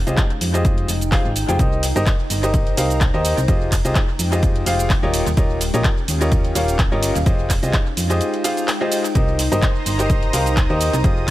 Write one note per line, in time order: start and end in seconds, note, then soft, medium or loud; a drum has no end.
0.00 1.59 G#3 medium
0.00 5.99 D#4 medium
0.00 0.46 F5 medium
0.07 0.16 C2 loud
0.07 0.19 F4 loud
0.07 0.19 G4 medium
0.07 0.19 G#4 medium
0.07 0.19 C5 medium
0.07 0.19 D#5 loud
0.07 closed hi-hat soft
0.07 cabasa soft
0.17 kick loud
0.17 clap loud
0.17 closed hi-hat medium
0.17 cabasa soft
0.23 2.35 G5 medium
0.30 closed hi-hat soft
0.41 0.86 F2 medium
0.41 open hi-hat loud
0.41 cabasa medium
0.54 0.86 F4 medium
0.54 0.86 G4 medium
0.54 0.86 G#4 medium
0.54 0.86 C5 medium
0.54 0.86 D#5 loud
0.54 closed hi-hat soft
0.54 cabasa soft
0.65 kick loud
0.65 closed hi-hat medium
0.65 cabasa soft
0.78 closed hi-hat soft
0.88 1.22 F1 medium
0.88 open hi-hat loud
0.88 cabasa medium
1.01 closed hi-hat soft
1.01 cabasa soft
1.12 1.26 F4 loud
1.12 1.26 G4 medium
1.12 1.26 G#4 medium
1.12 1.26 C5 medium
1.12 1.26 F5 loud
1.12 kick loud
1.12 clap loud
1.12 open hi-hat medium
1.12 cabasa soft
1.25 1.44 G#1 medium
1.36 open hi-hat loud
1.36 cabasa medium
1.49 1.58 F1 loud
1.49 1.58 F4 medium
1.49 1.58 G4 medium
1.49 1.58 G#4 medium
1.49 1.58 C5 medium
1.49 1.58 G5 medium
1.49 closed hi-hat soft
1.49 cabasa soft
1.59 1.93 C2 loud
1.59 1.81 D#4 medium
1.59 1.81 G4 medium
1.59 1.81 A#4 medium
1.59 1.81 C5 medium
1.59 1.81 D#5 loud
1.59 kick loud
1.59 closed hi-hat medium
1.59 cabasa soft
1.83 4.15 C5 medium
1.83 open hi-hat loud
1.83 ride medium
1.83 cabasa medium
1.89 4.15 A#5 medium
1.96 2.05 G1 loud
1.96 2.08 D#4 loud
1.96 2.08 G4 medium
1.96 2.08 A#4 medium
1.96 2.08 C5 medium
1.96 2.08 D#5 loud
1.96 closed hi-hat soft
1.96 cabasa soft
2.06 kick loud
2.06 clap loud
2.06 closed hi-hat medium
2.06 cabasa soft
2.30 2.75 G1 medium
2.30 open hi-hat loud
2.30 ride medium
2.30 cabasa medium
2.43 2.75 D#4 medium
2.43 2.75 G4 medium
2.43 2.75 A#4 medium
2.43 2.75 C5 medium
2.43 2.75 D#5 loud
2.43 closed hi-hat soft
2.43 cabasa soft
2.54 kick loud
2.54 closed hi-hat medium
2.54 cabasa soft
2.67 closed hi-hat soft
2.77 3.11 C2 medium
2.77 2.99 D#4 medium
2.77 2.99 G4 medium
2.77 2.99 A#4 medium
2.77 2.99 C5 medium
2.77 2.99 F5 loud
2.77 open hi-hat loud
2.77 ride medium
2.77 cabasa medium
2.90 closed hi-hat medium
2.90 cabasa soft
3.01 kick loud
3.01 clap loud
3.01 closed hi-hat medium
3.01 cabasa soft
3.14 3.33 D#2 medium
3.14 3.35 D#4 loud
3.14 3.35 G4 loud
3.14 3.35 A#4 medium
3.14 3.35 C5 loud
3.14 3.35 D#5 loud
3.25 open hi-hat loud
3.25 ride medium
3.25 cabasa medium
3.37 3.47 C2 loud
3.37 closed hi-hat soft
3.37 cabasa soft
3.48 3.81 F1 loud
3.48 3.70 F4 medium
3.48 3.70 G4 medium
3.48 3.70 G#4 medium
3.48 3.70 C5 medium
3.48 3.70 D#5 loud
3.48 kick loud
3.48 closed hi-hat medium
3.48 cabasa soft
3.61 6.00 G5 medium
3.72 kick medium
3.72 clap medium
3.72 open hi-hat loud
3.72 ride medium
3.72 cabasa medium
3.80 5.14 G#3 medium
3.85 3.94 C2 loud
3.85 3.97 F4 loud
3.85 3.97 G4 medium
3.85 3.97 G#4 medium
3.85 3.97 C5 medium
3.85 3.97 D#5 loud
3.85 closed hi-hat medium
3.85 cabasa soft
3.95 kick loud
3.95 clap loud
3.95 closed hi-hat medium
3.95 cabasa soft
4.19 4.64 F2 medium
4.19 open hi-hat loud
4.19 ride medium
4.19 cabasa medium
4.32 4.64 F4 medium
4.32 4.64 G4 medium
4.32 4.64 G#4 medium
4.32 4.64 C5 medium
4.32 4.64 D#5 loud
4.32 closed hi-hat medium
4.32 cabasa soft
4.43 kick loud
4.43 closed hi-hat medium
4.43 cabasa soft
4.56 closed hi-hat soft
4.66 5.00 F1 medium
4.66 4.88 F4 medium
4.66 4.88 G4 medium
4.66 4.88 G#4 medium
4.66 4.88 C5 medium
4.66 4.88 F5 loud
4.66 open hi-hat loud
4.66 ride medium
4.66 cabasa medium
4.79 closed hi-hat medium
4.79 cabasa soft
4.90 kick loud
4.90 clap loud
4.90 open hi-hat medium
4.90 cabasa soft
5.03 5.22 D#1 loud
5.03 5.24 F4 loud
5.03 5.24 G4 loud
5.03 5.24 A#4 medium
5.03 5.24 C#5 loud
5.03 5.24 D#5 loud
5.14 7.26 C#4 medium
5.14 open hi-hat loud
5.14 ride medium
5.14 cabasa medium
5.23 5.36 D#1 loud
5.23 7.26 G4 medium
5.23 closed hi-hat medium
5.27 cabasa soft
5.37 5.70 D#1 loud
5.37 5.59 F4 medium
5.37 5.59 G4 medium
5.37 5.59 A#4 medium
5.37 5.59 C#5 medium
5.37 5.59 D#5 medium
5.37 kick loud
5.37 closed hi-hat medium
5.37 cabasa soft
5.60 7.98 F5 medium
5.60 open hi-hat loud
5.60 ride medium
5.60 cabasa medium
5.74 5.83 A#1 loud
5.74 5.86 F4 loud
5.74 5.86 G4 medium
5.74 5.86 A#4 medium
5.74 5.86 C#5 medium
5.74 5.86 D#5 loud
5.74 closed hi-hat medium
5.74 cabasa soft
5.84 kick loud
5.84 clap loud
5.84 closed hi-hat medium
5.84 cabasa soft
6.08 6.53 D#2 medium
6.08 open hi-hat loud
6.08 ride medium
6.08 cabasa medium
6.21 6.53 F4 medium
6.21 6.53 G4 medium
6.21 6.53 A#4 medium
6.21 6.53 C#5 medium
6.21 6.53 D#5 loud
6.21 closed hi-hat medium
6.21 cabasa soft
6.32 kick loud
6.32 closed hi-hat medium
6.32 cabasa soft
6.45 closed hi-hat soft
6.55 6.89 D#1 medium
6.55 6.77 F4 medium
6.55 6.77 G4 medium
6.55 6.77 A#4 medium
6.55 6.77 C#5 medium
6.55 6.77 F5 loud
6.55 open hi-hat loud
6.55 ride medium
6.55 cabasa medium
6.68 closed hi-hat medium
6.68 cabasa soft
6.79 kick loud
6.79 clap loud
6.79 closed hi-hat medium
6.79 cabasa soft
6.92 7.11 G1 loud
6.92 7.13 F4 loud
6.92 7.13 G4 medium
6.92 7.13 A#4 loud
6.92 7.13 C#5 medium
6.92 7.13 D#5 loud
7.03 open hi-hat loud
7.03 ride medium
7.03 cabasa medium
7.15 7.25 D#1 loud
7.15 closed hi-hat medium
7.15 cabasa soft
7.26 7.59 F1 loud
7.26 11.30 D#4 medium
7.26 7.48 F4 medium
7.26 7.48 G4 medium
7.26 7.48 G#4 medium
7.26 7.48 C5 medium
7.26 7.48 D#5 loud
7.26 kick loud
7.26 closed hi-hat medium
7.26 cabasa soft
7.45 9.15 G#3 medium
7.50 kick medium
7.50 clap medium
7.50 open hi-hat loud
7.50 ride medium
7.50 cabasa medium
7.63 7.72 C2 loud
7.63 7.75 F4 loud
7.63 7.75 G4 medium
7.63 7.75 G#4 medium
7.63 7.75 C5 medium
7.63 7.75 D#5 loud
7.63 closed hi-hat medium
7.63 cabasa soft
7.73 kick loud
7.73 clap loud
7.73 closed hi-hat medium
7.73 cabasa soft
7.87 9.91 G5 medium
7.97 8.21 F2 medium
7.97 open hi-hat loud
7.97 ride medium
7.97 cabasa medium
8.10 8.42 F4 medium
8.10 8.42 G4 medium
8.10 8.42 G#4 medium
8.10 8.42 C5 medium
8.10 8.42 D#5 loud
8.10 closed hi-hat medium
8.10 cabasa soft
8.21 closed hi-hat medium
8.21 cabasa soft
8.34 closed hi-hat soft
8.44 8.66 F4 medium
8.44 8.66 G4 medium
8.44 8.66 G#4 medium
8.44 8.66 C5 medium
8.44 8.66 F5 medium
8.44 open hi-hat loud
8.44 ride medium
8.44 cabasa medium
8.57 closed hi-hat medium
8.57 cabasa soft
8.68 clap loud
8.68 open hi-hat medium
8.68 cabasa soft
8.81 9.02 F4 loud
8.81 9.02 G4 medium
8.81 9.02 G#4 medium
8.81 9.02 C5 medium
8.81 9.02 D#5 loud
8.92 open hi-hat loud
8.92 ride medium
8.92 cabasa medium
9.05 closed hi-hat medium
9.05 cabasa soft
9.15 9.48 C2 loud
9.15 9.37 D#4 medium
9.15 9.37 G4 medium
9.15 9.37 A#4 medium
9.15 11.02 C5 medium
9.15 9.37 C5 medium
9.15 9.37 D#5 medium
9.15 11.02 A#5 medium
9.15 11.30 D#6 medium
9.15 kick loud
9.15 closed hi-hat medium
9.15 cabasa soft
9.35 11.30 C5 medium
9.35 11.30 A#5 medium
9.35 open hi-hat loud
9.35 ride medium
9.40 cabasa medium
9.52 9.61 G1 loud
9.52 9.64 D#4 loud
9.52 9.64 G4 medium
9.52 9.64 A#4 medium
9.52 9.64 C5 medium
9.52 9.64 D#5 loud
9.52 closed hi-hat medium
9.52 cabasa soft
9.62 kick loud
9.62 clap loud
9.62 closed hi-hat medium
9.62 cabasa soft
9.86 10.31 G1 medium
9.86 open hi-hat loud
9.86 ride medium
9.86 cabasa medium
9.99 10.31 D#4 medium
9.99 10.31 G4 medium
9.99 10.31 A#4 medium
9.99 10.31 C5 medium
9.99 10.31 D#5 loud
9.99 closed hi-hat medium
9.99 cabasa soft
10.10 kick loud
10.10 closed hi-hat medium
10.10 cabasa soft
10.23 closed hi-hat soft
10.33 10.67 C2 medium
10.33 10.55 D#4 medium
10.33 10.55 G4 medium
10.33 10.55 A#4 medium
10.33 10.55 C5 medium
10.33 10.55 F5 loud
10.33 open hi-hat loud
10.33 ride medium
10.33 cabasa medium
10.46 closed hi-hat medium
10.46 cabasa soft
10.57 kick loud
10.57 clap loud
10.57 closed hi-hat medium
10.57 cabasa soft
10.70 10.89 D#2 loud
10.70 10.91 D#4 loud
10.70 10.91 G4 medium
10.70 10.91 A#4 medium
10.70 10.91 C5 medium
10.70 10.91 D#5 loud
10.81 open hi-hat loud
10.81 ride medium
10.81 cabasa medium
10.93 11.02 C2 loud
10.93 closed hi-hat medium
10.93 cabasa soft
11.04 11.30 F1 loud
11.04 11.30 G#3 medium
11.04 11.30 F4 medium
11.04 11.26 F4 medium
11.04 11.26 G4 medium
11.04 11.26 G#4 medium
11.04 11.26 C5 medium
11.04 11.26 D#5 loud
11.04 11.30 G5 medium
11.04 kick loud
11.04 closed hi-hat medium
11.04 cabasa soft